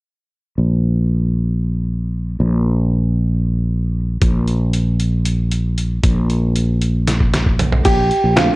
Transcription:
0.58 2.36 A#1 medium
2.40 4.18 A#1 medium
4.22 6.00 A#1 medium
4.22 kick medium
4.22 closed hi-hat medium
4.48 closed hi-hat soft
4.73 closed hi-hat medium
5.00 closed hi-hat soft
5.25 closed hi-hat medium
5.51 closed hi-hat soft
5.78 closed hi-hat soft
6.04 7.81 A#1 medium
6.04 kick medium
6.04 closed hi-hat medium
6.30 closed hi-hat soft
6.56 closed hi-hat medium
6.82 closed hi-hat soft
7.08 snare soft
7.08 closed hi-hat medium
7.20 kick soft
7.34 snare medium
7.34 closed hi-hat soft
7.46 kick soft
7.59 closed hi-hat soft
7.59 floor tom medium
7.72 floor tom medium
7.85 8.10 A#1 medium
7.85 8.38 G4 medium
7.85 kick medium
7.85 closed hi-hat medium
7.85 crash medium
8.11 closed hi-hat soft
8.24 8.48 A#1 medium
8.36 8.56 A3 medium
8.36 8.56 C4 soft
8.36 8.56 D4 medium
8.36 8.53 F4 medium
8.36 snare loud
8.36 closed hi-hat medium

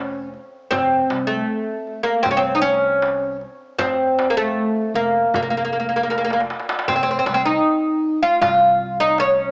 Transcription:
0.00 0.35 F1 medium
0.00 0.27 C#4 medium
0.34 darbuka ka soft
0.71 1.01 F1 medium
0.71 1.27 C4 medium
0.71 darbuka dum medium
1.10 1.39 C2 medium
1.10 darbuka tek medium
1.27 2.03 A3 medium
1.87 darbuka ka soft
2.03 2.25 A#3 medium
2.23 3.43 C2 medium
2.23 2.30 C4 medium
2.23 darbuka dum medium
2.31 2.39 C#4 medium
2.37 2.64 C4 medium
2.55 2.61 D#4 medium
2.61 3.36 C#4 medium
2.61 darbuka ka soft
2.84 darbuka ka soft
3.02 darbuka tek medium
3.41 darbuka ka soft
3.79 4.68 F2 medium
3.79 4.30 C4 medium
3.79 darbuka dum medium
4.19 darbuka tek medium
4.30 4.37 A#3 medium
4.37 4.91 A3 medium
4.37 darbuka ka soft
4.76 darbuka ka soft
4.94 5.24 F1 medium
4.94 5.34 A#3 medium
5.16 darbuka ka soft
5.34 6.51 F1 medium
5.34 5.41 A#3 medium
5.34 darbuka dum medium
5.42 5.49 A#3 soft
5.50 5.56 A#3 soft
5.57 5.63 A#3 soft
5.65 5.71 A#3 soft
5.72 5.78 A#3 soft
5.72 darbuka ka soft
5.80 5.86 A#3 soft
5.89 5.95 A#3 soft
5.89 darbuka ka soft
5.96 6.02 A#3 soft
6.03 6.09 A#3 soft
6.10 6.16 A#3 soft
6.10 darbuka tek soft
6.18 6.23 A#3 soft
6.18 darbuka ka soft
6.25 6.31 A#3 medium
6.30 6.39 A#3 soft
6.30 darbuka tek medium
6.40 darbuka ka medium
6.50 darbuka tek medium
6.60 darbuka ka medium
6.69 darbuka tek medium
6.79 darbuka ka medium
6.88 7.18 F1 medium
6.88 6.95 C4 medium
6.88 darbuka dum medium
6.96 7.02 C4 medium
7.03 7.10 C4 medium
7.11 7.18 C4 medium
7.19 7.25 C4 medium
7.26 7.56 C2 medium
7.26 7.33 C4 soft
7.26 darbuka tek medium
7.34 7.41 C4 medium
7.46 8.22 D#4 medium
8.04 darbuka ka soft
8.23 8.40 F4 medium
8.41 9.51 C2 medium
8.41 9.00 F4 medium
8.41 darbuka dum medium
8.80 darbuka ka soft
9.00 9.18 D#4 medium
9.00 darbuka ka soft
9.18 9.51 C#4 medium
9.18 darbuka tek medium

